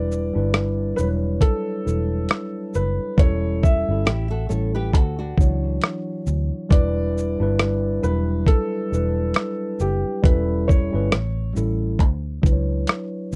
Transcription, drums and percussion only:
0.12 shaker soft
0.54 cross-stick loud
0.54 closed hi-hat medium
0.98 shaker medium
1.41 kick medium
1.41 closed hi-hat medium
1.88 shaker soft
2.29 cross-stick loud
2.29 closed hi-hat medium
2.74 shaker soft
3.18 kick loud
3.18 closed hi-hat medium
3.63 kick medium
3.63 shaker soft
4.07 cross-stick loud
4.07 closed hi-hat medium
4.50 shaker medium
4.93 kick medium
4.93 closed hi-hat medium
5.38 kick medium
5.38 shaker soft
5.82 cross-stick loud
5.82 closed hi-hat medium
6.27 shaker soft
6.71 kick loud
6.71 closed hi-hat medium
7.18 shaker soft
7.59 cross-stick loud
7.59 closed hi-hat medium
8.04 shaker medium
8.46 kick medium
8.46 closed hi-hat medium
8.93 shaker soft
9.34 cross-stick loud
9.34 closed hi-hat medium
9.80 shaker soft
10.24 kick loud
10.24 closed hi-hat medium
10.69 kick medium
10.69 shaker soft
11.12 cross-stick loud
11.12 closed hi-hat medium
11.56 shaker medium
11.99 kick medium
11.99 closed hi-hat medium
12.43 kick medium
12.43 closed hi-hat soft
12.43 shaker soft
12.87 cross-stick loud
12.87 closed hi-hat medium
13.32 shaker soft

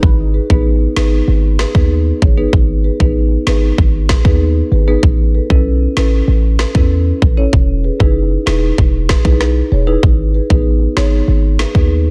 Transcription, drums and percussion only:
0.03 kick loud
0.50 kick medium
0.96 cross-stick medium
0.96 snare loud
1.59 cross-stick medium
1.59 snare loud
1.75 kick medium
2.22 kick loud
2.53 kick loud
3.00 kick medium
3.47 cross-stick medium
3.47 snare loud
3.78 kick medium
4.09 kick medium
4.09 cross-stick medium
4.09 snare loud
4.25 kick medium
5.03 kick loud
5.50 kick medium
5.97 cross-stick medium
5.97 snare loud
6.59 cross-stick medium
6.59 snare loud
6.75 kick medium
7.22 kick loud
7.53 kick loud
8.00 kick medium
8.47 cross-stick medium
8.47 snare loud
8.78 kick medium
9.09 kick medium
9.09 cross-stick medium
9.09 snare loud
9.25 kick medium
9.41 cross-stick medium
9.41 snare medium
10.03 kick loud
10.50 kick medium
10.97 cross-stick medium
10.97 snare loud
11.59 cross-stick medium
11.59 snare loud
11.75 kick medium

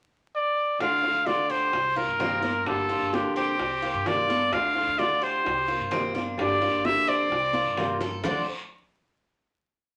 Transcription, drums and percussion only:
0.80 high bongo medium
0.80 high conga soft
0.80 long guiro medium
1.04 high bongo soft
1.04 high conga soft
1.26 high bongo medium
1.26 high conga medium
1.26 short guiro medium
1.50 high conga soft
1.50 short guiro medium
1.73 high bongo medium
1.73 high conga soft
1.73 long guiro medium
1.97 high bongo soft
1.97 high conga soft
2.20 high bongo medium
2.20 low bongo medium
2.20 high conga soft
2.20 short guiro medium
2.43 high bongo soft
2.43 high conga medium
2.43 short guiro medium
2.66 high bongo medium
2.66 high conga soft
2.66 long guiro medium
2.89 high bongo soft
2.89 high conga soft
3.13 high bongo medium
3.13 high conga medium
3.13 short guiro medium
3.36 high bongo soft
3.36 high conga soft
3.36 short guiro medium
3.59 high bongo medium
3.59 high conga soft
3.59 long guiro medium
3.83 high conga soft
4.05 high bongo medium
4.05 low bongo medium
4.05 high conga soft
4.05 short guiro medium
4.28 high bongo soft
4.28 high conga medium
4.28 short guiro medium
4.53 high bongo medium
4.53 long guiro medium
4.76 high bongo soft
4.76 high conga soft
4.99 high bongo medium
4.99 high conga medium
4.99 short guiro medium
5.22 high conga soft
5.22 short guiro medium
5.45 high bongo medium
5.45 high conga soft
5.45 long guiro medium
5.70 high bongo soft
5.70 high conga soft
5.91 high bongo medium
5.91 low bongo medium
5.91 high conga soft
5.91 short guiro medium
6.15 high bongo soft
6.15 high conga medium
6.15 short guiro medium
6.38 high bongo medium
6.38 long guiro medium
6.62 high bongo soft
6.62 high conga soft
6.85 high bongo medium
6.85 high conga medium
6.85 short guiro medium
7.08 high bongo soft
7.08 high conga soft
7.08 short guiro medium
7.31 high bongo medium
7.31 high conga soft
7.31 long guiro medium
7.53 high conga medium
7.77 high bongo medium
7.77 low bongo medium
7.77 short guiro medium
8.00 high bongo medium
8.00 low conga medium
8.00 short guiro medium
8.23 low bongo loud
8.23 low conga loud
8.23 long guiro medium

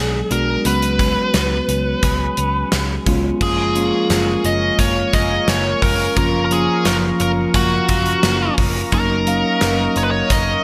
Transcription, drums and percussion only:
0.31 closed hi-hat medium
0.65 closed hi-hat medium
0.82 closed hi-hat medium
0.99 kick medium
0.99 closed hi-hat medium
1.34 snare loud
1.34 closed hi-hat medium
1.69 closed hi-hat medium
2.03 kick medium
2.03 closed hi-hat medium
2.37 closed hi-hat medium
2.72 snare loud
2.72 closed hi-hat medium
3.06 kick medium
3.06 closed hi-hat medium
3.41 kick loud
3.41 crash medium
3.76 closed hi-hat medium
4.10 snare medium
4.10 closed hi-hat medium
4.44 closed hi-hat medium
4.79 kick medium
4.79 closed hi-hat medium
5.13 kick medium
5.13 closed hi-hat medium
5.48 snare loud
5.48 closed hi-hat medium
5.82 kick medium
5.82 open hi-hat medium
6.17 kick loud
6.17 closed hi-hat medium
6.51 closed hi-hat medium
6.85 snare loud
6.85 closed hi-hat medium
7.20 closed hi-hat medium
7.54 kick medium
7.54 closed hi-hat medium
7.89 kick medium
7.89 closed hi-hat medium
8.06 closed hi-hat medium
8.23 snare loud
8.23 closed hi-hat medium
8.58 kick medium
8.58 open hi-hat medium
8.92 kick loud
8.92 closed hi-hat medium
9.27 closed hi-hat medium
9.61 snare loud
9.61 closed hi-hat medium
9.96 closed hi-hat medium
10.30 kick loud
10.30 closed hi-hat medium

